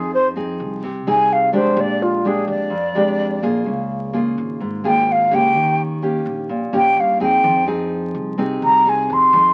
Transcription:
Already playing: F2 F3 C4 D#4 G#4
0.14 C5
0.36 C4 D#4 G#4
0.60 C2
0.83 C3
1.07 C2 C4 D#4 G#4 G#5
1.33 F5
1.53 F2 G#3 D4 G4 C5
1.77 A#1 A#2 D5
2.03 F4
2.25 G#3 D4 G4 G#4
2.48 F2 D5
2.70 F2
2.95 F2 G#3 D4 G4
3.42 A#1 A#3 F4 G#4
3.66 C#2 C#3
4.13 A#3 F4 G#4
4.38 G#1
4.60 G#2
4.84 G#1 A#3 F4 G#4 G5
5.12 F5
5.31 C#2 A#3 C#4 G4 G5
5.55 D#2 D#3
6.02 A#3 C#4 G4
6.26 A#1
6.49 A#2
6.73 A#1 A#3 C#4 G4 G5
6.96 G2
7.00 F5
7.20 F2 C4 D#4 G#4 G5
7.44 F2 F3
7.67 C4 D#4 G#4
8.14 C2
8.38 C3 C4 D#4 G#4
8.62 C2 A#5
8.85 C4 D#4 G#4 G#5
9.10 F2 C6
9.33 F2 F3 C4 D#4 G#4

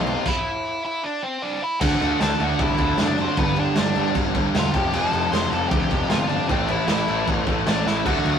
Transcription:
Already playing: B1 F4 F5
0.06 F2 C3 F3, crash
0.25 E4, kick, crash
0.30 E5
0.85 E4 E5
1.04 D4 D5
1.23 C4 C5
1.42 D4 D5
1.62 E4 E5
1.81 D2 D3 A3 D4 F#4 F#5, kick, crash
2.00 D2 D3 A3 D4, crash
2.19 D2 D3 A3 D4 A4 A5, snare, crash
2.39 D2 D3 A3 D4 F#4 F#5, crash
2.59 C2 D3 A3 D4 E4 E5, kick, crash
2.78 D2 D3 A3 D4, kick, crash
2.98 F#1 D3 A3 D4, snare, crash
3.02 D4 D5
3.18 D3 A3 C4 D4 C5, crash
3.37 G1 G2 D3 G3 B3 B4, kick, crash
3.56 G2 D3 G3 D4 D5, crash
3.76 G1 G2 D3 G3 D4 D5, snare, crash
3.96 G1 G2 D3 G3, crash
4.15 G1 G2 D3 G3, kick, crash
4.35 G1 G2 D3 G3, kick, crash
4.54 E1 G2 D3 G3 F4 F5, snare, crash
4.74 F1 F2 C3 F3 G4 G5, kick, crash
4.93 F1 F2 C3 F3 A4 A5, crash
5.12 F1 F2 C3 F3, crash
5.32 F1 F2 C3 F3 C5 C6, snare, crash
5.50 F1 F2 C3 A4 A5, crash
5.54 F3
5.68 D2 F2 C3 G4 G5, kick
5.72 F3, crash
5.90 F1 F2 C3 F3, kick, crash
6.09 G1 F2 C3 F3 F4 F5, snare, crash
6.27 F2 C3 F3 D4 D5, crash
6.47 A1 A2 E3 A3 C4 C5, kick, crash
6.68 A2 E3 A3 E4 E5, crash
6.88 A1 A2 E3 A3 E4 E5, snare, crash
7.08 A1 A2 E3 A3, crash
7.27 A1 A2 E3 A3, kick, crash
7.46 A1 A2 E3 A3, kick, crash
7.66 A1 A2 E3 A3 D4 D5, snare, crash
7.86 A1 A2 E3 A3 E4 E5, snare
8.05 D2 D3 F#3 A3 D4 F#4 F#5, kick, crash
8.24 D2 D3 A3 D4, crash

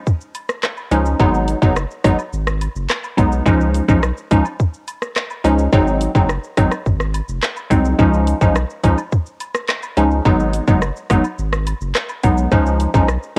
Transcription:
0.07 kick, shaker
0.21 shaker
0.35 closed hi-hat, cabasa, high woodblock, shaker
0.49 cross-stick, shaker
0.63 cross-stick, clap, shaker
0.77 high woodblock, shaker
0.91 C#2 F3 G#3 C#4 D#4, closed hi-hat, cabasa, shaker
1.06 shaker
1.19 G#1 F#3 G#3 B3 D#4, kick, shaker
1.34 shaker
1.48 closed hi-hat, cabasa, shaker
1.62 F#1 F#3 G#3 B3 D#4, kick, shaker
1.76 cross-stick, high woodblock, shaker
1.91 shaker
2.04 G#1 F#3 G#3 B3 D#4, kick, cross-stick, closed hi-hat, cabasa, shaker
2.19 high woodblock, shaker
2.33 G#1, shaker
2.47 cross-stick, shaker
2.61 closed hi-hat, cabasa, high woodblock, shaker
2.76 F#1, shaker
2.89 cross-stick, clap, shaker
3.04 high woodblock, shaker
3.17 B1 F#3 G#3 B3 D#4, kick, closed hi-hat, cabasa, shaker
3.32 shaker
3.46 C#2 F3 G#3 C#4 D#4, kick, shaker
3.61 shaker
3.74 closed hi-hat, cabasa, shaker
3.88 B1 F3 G#3 C#4 D#4, kick, shaker
4.03 cross-stick, high woodblock, shaker
4.17 shaker
4.31 C#2 F3 G#3 C#4 D#4, kick, closed hi-hat, cabasa, shaker
4.45 high woodblock, shaker
4.59 kick, shaker
4.74 shaker
4.88 closed hi-hat, cabasa, high woodblock, shaker
5.02 cross-stick, shaker
5.16 cross-stick, clap, shaker
5.30 high woodblock, shaker
5.44 C#2 F3 G#3 C#4 D#4, closed hi-hat, cabasa, shaker
5.59 shaker
5.72 G#1 F#3 G#3 C4 D#4, kick, shaker
5.87 shaker
6.01 closed hi-hat, cabasa, shaker
6.15 F#1 F#3 G#3 C4 D#4, kick, shaker
6.29 cross-stick, high woodblock, shaker
6.44 shaker
6.57 G#1 F#3 G#3 C4 D#4, kick, cross-stick, closed hi-hat, cabasa, shaker
6.71 cross-stick, high woodblock, shaker
6.86 G#1, kick, shaker
7.00 cross-stick, shaker
7.14 closed hi-hat, cabasa, high woodblock, shaker
7.28 F1, shaker
7.42 cross-stick, clap, shaker
7.57 high woodblock, shaker
7.70 C2 F#3 G#3 C4 D#4, kick, closed hi-hat, cabasa, shaker
7.85 shaker
7.99 C#2 F3 G#3 C#4 D#4, kick, shaker
8.14 shaker
8.27 closed hi-hat, cabasa, shaker
8.41 B1 F3 G#3 C#4 D#4, kick, shaker
8.55 cross-stick, high woodblock, shaker
8.70 shaker
8.84 C#2 F3 G#3 C#4 D#4, kick, closed hi-hat, cabasa, shaker
8.98 high woodblock, shaker
9.12 kick, shaker
9.26 shaker
9.40 closed hi-hat, cabasa, high woodblock, shaker
9.55 cross-stick, shaker
9.68 cross-stick, clap, shaker
9.83 high woodblock, shaker
9.97 C#2 F3 G#3 C#4 D#4, closed hi-hat, cabasa, shaker
10.11 shaker
10.25 G#1 F#3 G#3 B3 D#4, kick, shaker
10.40 shaker
10.53 closed hi-hat, cabasa, shaker
10.68 F#1 F#3 G#3 B3 D#4, kick, shaker
10.82 cross-stick, high woodblock, shaker
10.96 shaker
11.10 G#1 F#3 G#3 B3 D#4, kick, cross-stick, closed hi-hat, cabasa, shaker
11.24 high woodblock, shaker
11.38 G#1, shaker
11.53 cross-stick, shaker
11.67 closed hi-hat, cabasa, high woodblock, shaker
11.81 F#1, shaker
11.95 cross-stick, clap, shaker
12.09 high woodblock, shaker
12.23 B1 F#3 G#3 B3 D#4, kick, closed hi-hat, cabasa, shaker
12.38 shaker
12.51 C#2 F3 G#3 C#4 D#4, kick, shaker
12.66 shaker
12.80 closed hi-hat, cabasa, shaker
12.94 B1 F3 G#3 C#4 D#4, kick, shaker
13.08 cross-stick, high woodblock, shaker
13.23 shaker

